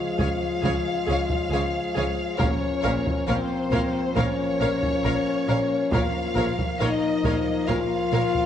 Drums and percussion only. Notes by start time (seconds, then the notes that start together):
0.19 taiko
0.63 taiko
1.30 taiko
2.40 taiko
3.07 taiko
3.73 taiko
4.17 taiko
4.83 taiko
5.92 taiko
6.59 taiko
7.25 taiko
7.69 taiko
8.35 taiko